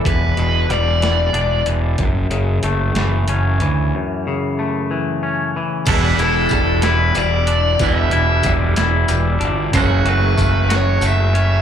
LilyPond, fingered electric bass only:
\new Staff \with { instrumentName = "Fingered electric bass" } { \clef bass \time 6/8 \key e \dorian \tempo 4. = 62 e,,8 e,,8 e,,4 e,,8 e,,8 | fis,,8 fis,,8 fis,,8 fis,,8 fis,,8 d,8 | r2. | e,,8 e,,8 e,,4 e,,4 |
e,,8 e,,8 e,,8 e,,8 e,,8 g,,8 | fis,,8 fis,,8 fis,,4 fis,,4 | }